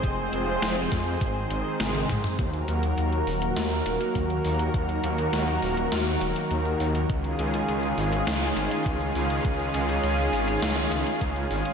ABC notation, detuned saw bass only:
X:1
M:4/4
L:1/8
Q:1/4=102
K:Ebdor
V:1 name="Detuned saw bass" clef=bass
F,,, F,,, F,,, F,, A,,, A,,, A,,, A,, | E,, E,, E,, E,,, E,, E,,, E,, E,, | E,, E,, E,, E,,, E,, E,,, E,, E,, | D,, D,, D,, A,,, D,, A,,, D,, D,, |
D,, D,, D,, A,,, D,, D,, D,, A,,, |]